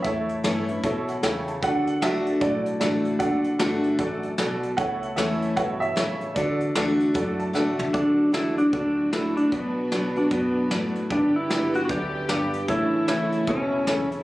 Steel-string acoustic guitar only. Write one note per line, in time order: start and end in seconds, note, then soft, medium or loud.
0.05 0.81 A2 medium
0.44 0.67 E3 medium
0.44 0.67 A3 medium
0.44 0.68 C#4 medium
0.44 0.67 E4 medium
0.68 0.84 C#4 soft
0.68 0.83 E4 medium
0.83 1.22 B2 medium
1.23 1.61 C#3 medium
1.63 2.39 D3 medium
2.03 2.40 A3 medium
2.03 2.41 D4 medium
2.03 2.41 F#4 loud
2.42 3.18 A2 medium
2.81 3.19 D3 medium
2.81 3.19 A3 medium
2.81 3.19 D4 medium
2.81 3.20 F#4 medium
3.21 3.58 D3 medium
3.59 3.98 D3 medium
3.59 3.98 A3 loud
3.59 3.98 D4 medium
3.59 3.98 F#4 loud
3.99 4.37 F#2 medium
4.38 4.76 B2 medium
4.77 5.54 A2 medium
5.16 5.55 E3 medium
5.16 5.55 A3 medium
5.16 5.56 C#4 medium
5.16 5.56 E4 loud
5.57 5.95 B2 medium
5.96 6.34 C#3 medium
6.36 6.74 D3 medium
6.75 7.14 D3 medium
6.75 7.14 A3 medium
6.75 7.14 D4 loud
6.75 7.14 F#4 loud
7.14 7.91 A2 medium
7.53 7.92 D3 medium
7.53 7.92 A3 medium
7.53 7.93 D4 medium
7.53 7.93 F#4 medium
7.94 8.31 D3 medium
8.32 8.56 D3 medium
8.32 8.57 A3 medium
8.32 8.57 D4 medium
8.32 8.56 F#4 medium
8.57 8.73 D4 soft
8.57 8.72 F#4 medium
8.73 9.49 A2 medium
9.13 9.51 A3 medium
9.13 9.51 D4 medium
9.13 9.52 F#4 medium
9.53 10.29 B2 medium
9.92 10.15 F#3 medium
9.92 10.16 B3 medium
9.92 10.16 D4 medium
9.92 10.15 F#4 medium
10.16 10.32 D4 soft
10.16 10.31 F#4 medium
10.32 10.70 B2 medium
10.72 11.09 A2 medium
11.11 11.87 G2 medium
11.50 11.73 D3 medium
11.50 11.74 G3 medium
11.50 11.74 B3 medium
11.50 11.73 G4 medium
11.74 11.90 B3 soft
11.74 11.89 G4 medium
11.90 12.28 F#2 medium
12.29 12.67 G2 medium
12.68 13.45 A2 medium
13.07 13.46 E3 medium
13.07 13.46 A3 medium
13.07 13.47 C#4 medium
13.07 13.47 E4 medium
13.48 13.86 B2 medium
13.87 14.23 C#3 medium